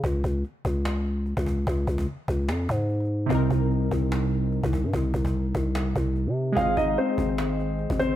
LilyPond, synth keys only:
\new Staff \with { instrumentName = "Synth keys" } { \time 4/4 \key c \phrygian \tempo 4 = 147 r1 | r1 | <c c' ees' bes'>1~ | <c c' ees' bes'>1 |
<aes aes' c'' ees''>1 | }